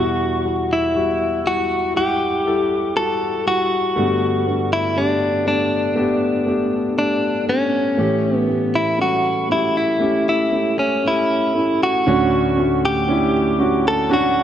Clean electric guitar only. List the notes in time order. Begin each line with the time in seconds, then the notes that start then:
Already playing: F#4
0.73 E4
1.47 F#4
1.97 G4
2.97 A4
3.48 F#4
4.73 E4
4.98 D4
5.48 D4
6.99 D4
7.49 C#4
8.37 B3
8.75 E4
9.02 F#4
9.52 E4
9.77 E4
10.29 E4
10.79 C#4
11.08 E4
11.83 F#4
12.85 G4
13.88 A4
14.13 F#4